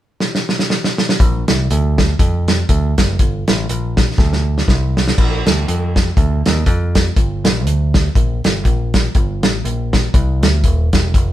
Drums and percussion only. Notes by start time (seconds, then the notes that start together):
0.20 snare
0.35 snare
0.49 snare
0.59 snare
0.70 snare
0.84 snare
0.98 snare
1.09 snare
1.20 kick, closed hi-hat
1.48 snare, closed hi-hat
1.70 closed hi-hat
1.98 kick, snare, closed hi-hat
2.19 kick, closed hi-hat
2.48 snare, closed hi-hat
2.69 kick, closed hi-hat
2.98 kick, snare, closed hi-hat
3.19 kick, closed hi-hat
3.48 snare, closed hi-hat
3.69 closed hi-hat
3.97 kick, snare, closed hi-hat
4.18 kick, snare
4.33 snare
4.58 snare
4.68 kick, snare
4.97 snare
5.08 snare
5.18 kick, crash
5.46 snare, closed hi-hat
5.68 closed hi-hat
5.96 kick, snare, closed hi-hat
6.17 kick, closed hi-hat
6.46 snare, closed hi-hat
6.66 kick, closed hi-hat
6.95 kick, snare, closed hi-hat
7.17 kick, closed hi-hat
7.45 snare, closed hi-hat
7.67 closed hi-hat
7.94 kick, snare, closed hi-hat
8.15 kick, closed hi-hat
8.44 snare, closed hi-hat
8.65 kick, closed hi-hat
8.94 kick, snare, closed hi-hat
9.15 kick, closed hi-hat
9.43 snare, closed hi-hat
9.65 closed hi-hat
9.93 kick, snare, closed hi-hat
10.14 kick, closed hi-hat
10.43 snare, closed hi-hat
10.64 kick, closed hi-hat
10.93 kick, snare, closed hi-hat
11.14 kick, closed hi-hat